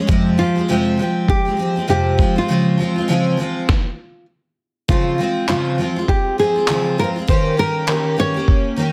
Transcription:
0.07 steel-string acoustic guitar F2 C3 F3 G#3 C4 G4, kick
0.38 steel-string acoustic guitar F3 G#3 C4 G4, nylon-string guitar F4
0.55 steel-string acoustic guitar F3 G#3 C4 G4
0.68 steel-string acoustic guitar F2 C3 F3 G#3 C4 G4
0.97 steel-string acoustic guitar F3 G#3 C4 G4
1.28 nylon-string guitar G4, kick
1.45 steel-string acoustic guitar F3 G#3 C4 G4
1.57 steel-string acoustic guitar F3 G#3 C4 G4
1.76 steel-string acoustic guitar F3 G#3 C4 G4
1.88 steel-string acoustic guitar F2 C3 F3 G#3 C4 G4, nylon-string guitar G4
2.18 steel-string acoustic guitar F3 G#3 C4 F4, kick
2.36 steel-string acoustic guitar G#3 C4 F4, nylon-string guitar F4
2.48 steel-string acoustic guitar C#3 F3 G#3 C4 F4
2.78 steel-string acoustic guitar F3 G#3 C4 F4
2.96 steel-string acoustic guitar G#3 C4 F4
3.08 steel-string acoustic guitar C#3 F3 G#3 C4 F4
3.37 steel-string acoustic guitar F3 G#3 C4 F4
3.69 kick, snare
4.88 steel-string acoustic guitar C#3 F3 G#3 C4 F4, nylon-string guitar F4, kick
5.18 steel-string acoustic guitar F3 G#3 C4 F4
5.48 steel-string acoustic guitar C#3 F3 G#3 C4 F4, nylon-string guitar F4, clap
5.78 steel-string acoustic guitar F3 G#3 C4 F4
5.96 steel-string acoustic guitar G#3 C4 F4
6.08 nylon-string guitar G4, kick
6.38 steel-string acoustic guitar F3 G#3 C4 F4, nylon-string guitar G#4
6.56 steel-string acoustic guitar G#3 C4 F4
6.68 steel-string acoustic guitar C#3 F3 G#3 C4 F4, clap
6.98 steel-string acoustic guitar F3 G#3 C4 F4, nylon-string guitar A#4
7.16 steel-string acoustic guitar G#3 C4 F4
7.28 steel-string acoustic guitar D#3 A#3 C#4 G4, nylon-string guitar C5, kick
7.57 steel-string acoustic guitar D#3 A#3 C#4 G4, nylon-string guitar A#4
7.87 steel-string acoustic guitar D#3 A#3 C#4 G4, clap
8.17 steel-string acoustic guitar D#3 A#3 C#4 G4, nylon-string guitar C#5
8.34 steel-string acoustic guitar A#3 C#4 G4
8.48 kick
8.76 steel-string acoustic guitar D#3 A#3 C#4 G4

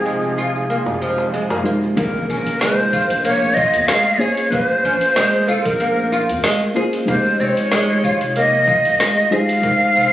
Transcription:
Already playing: synth drone C3 F3 G#3 D#4 F4, synth keys G#3 D#4 F4 G4 C5 G5, ney G#4
0.06 oud G#3, shaker
0.24 shaker
0.38 oud F4, shaker
0.55 shaker
0.70 oud A#3, shaker
0.86 darbuka tek, darbuka dum, shaker
1.02 oud F3, shaker
1.18 darbuka tek, shaker
1.34 oud G#3, shaker
1.50 oud A#3, darbuka tek, darbuka dum, shaker
1.63 synth keys G#3 D#4 F4 G4 C5, oud A#3, darbuka ka, shaker
1.84 shaker
1.95 analog synth bass A#1, synth keys A#3 C#4 F4 G#4 A#4, oud A#3, ney A#4, kick, open hi-hat, impact, shaker
2.16 shaker
2.29 analog synth bass A#1, oud C#4, ney A#4, shaker
2.47 open hi-hat, shaker
2.60 oud G#3, ney C5, snare, open hi-hat, shaker
2.79 shaker
2.93 oud F4, kick, shaker
3.10 analog synth bass A#1, open hi-hat, shaker
3.24 oud A#3, ney C#5, open hi-hat, shaker
3.43 shaker
3.54 oud F4, ney D#5, kick, shaker
3.74 analog synth bass F2, open hi-hat, shaker
3.87 oud G#3, ney F5, snare, open hi-hat, shaker
4.07 shaker
4.18 synth keys A#3 C#4 F4 G#4 C5, oud G#4, ney C#5, shaker
4.37 open hi-hat, shaker
4.50 analog synth bass A#1, synth keys A#3 C#4 F4 G#4 C5, oud A#3, ney B4, kick, open hi-hat, shaker
4.66 ney C5, shaker
4.84 analog synth bass A#1, oud C#4, shaker
5.01 open hi-hat, shaker
5.16 oud G#3, snare, open hi-hat, shaker
5.34 shaker
5.48 oud F4, ney A4, shaker
5.65 analog synth bass A#1, ney A#4, kick, open hi-hat, shaker
5.80 oud A#3, open hi-hat, shaker
5.98 shaker
6.12 oud F4, shaker
6.29 analog synth bass F2, open hi-hat, shaker
6.44 oud G#3, snare, open hi-hat, shaker
6.62 shaker
6.74 synth keys A#3 C#4 F4 G#4 C5, oud G#4, shaker
6.93 open hi-hat, shaker
7.05 analog synth bass F1, synth keys G#3 D#4 F4 G4, oud A#3, ney C5, kick, open hi-hat, shaker
7.09 synth keys D#5
7.26 shaker
7.40 analog synth bass F1, oud C4, ney D#5, shaker
7.44 ney C#5
7.57 open hi-hat, shaker
7.72 oud G#3, snare, open hi-hat, shaker
7.90 shaker
8.04 oud F4, kick, shaker
8.21 analog synth bass F1, open hi-hat, shaker
8.36 oud A#3, ney D#5, open hi-hat, shaker
8.54 shaker
8.68 oud F4, kick, shaker
8.85 analog synth bass C2, open hi-hat, shaker
8.99 oud G#3, snare, open hi-hat, shaker
9.18 shaker
9.31 synth keys G#3 D#4 F4 G4 C5, oud G#4, ney F5, shaker
9.49 open hi-hat, shaker
9.62 analog synth bass F1, synth keys G#3 D#4 F4 G5, oud A#3, kick, open hi-hat, shaker
9.66 synth keys C5
9.81 shaker
9.95 analog synth bass F1, oud C4, shaker

